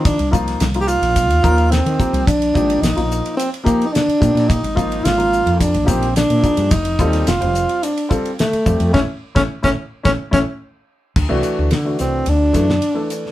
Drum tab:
CC |----------------|----------------|----------------|----------------|
RD |xx-xxx-xxx-xxx-x|xx-xxx-xxx-xxx-x|xx-xxx-xxx-xxx-x|xx-xxx-xxx-xxx-x|
HH |p-p-p-p-p-p-p-p-|p-p-p-p-p-p-p-p-|p-p-p-p-p-p-p-p-|p-p-p-p-p-p-p-p-|
SD |---oo--o----o---|----oo------o--o|----o-----o-o---|---oo-------o---|
BD |o-o-----o-o---o-|o-o-------o---o-|o-o-----o-o---o-|o-o-------o---o-|

CC |----------------|x---------------|
RD |----------------|--x-x-x-x-x-x-x-|
HH |----------------|--p---p---p---p-|
SD |o--o-o--o-o-----|----o-o---oo---o|
BD |o--o-o--o-o-----|o---------o-----|